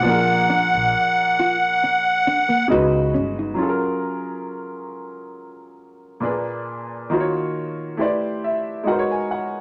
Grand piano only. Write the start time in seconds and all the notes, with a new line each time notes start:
0.00 A#2 F3
0.04 D4 G#4
0.09 A#4
2.68 C#3 G#3 D#4 F#4
2.72 B4
3.54 F#3 C#4
3.58 F4 G#4
3.63 A4
3.69 A#4
6.20 A#2 A#3 D4 G#4
6.25 B4
7.10 D#3 A#3 F4 F#4
7.14 C5
7.20 C#5
7.97 A3 E4 G4 B4 C5
8.02 D5
8.44 E5
8.84 G#3 D#4 F#4
8.88 A#4 B4 F#5
8.92 C5
8.99 C#5
9.11 G#5
9.31 F#5